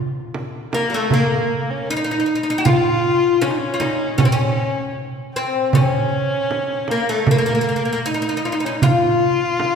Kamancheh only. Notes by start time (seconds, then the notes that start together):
0.73 A#3
0.94 A3
1.12 A#3
1.70 C#4
1.89 D#4
2.48 D#4
2.66 F4
3.42 C#4
3.50 D#4
3.58 C#4
4.20 C#4
4.33 C#4
5.35 C4
5.74 C#4
6.90 A#3
7.10 A3
7.29 A3
7.40 A#3
8.06 D#4
8.45 F4
8.55 D#4
8.65 C#4
8.75 D#4
8.84 F4